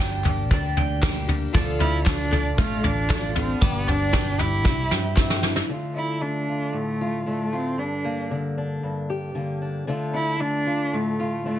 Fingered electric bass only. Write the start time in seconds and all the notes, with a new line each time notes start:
Already playing: G1
0.51 D2
0.77 D2
1.54 D2
2.58 A1
2.84 A1
3.62 G1
4.65 C2
4.91 G2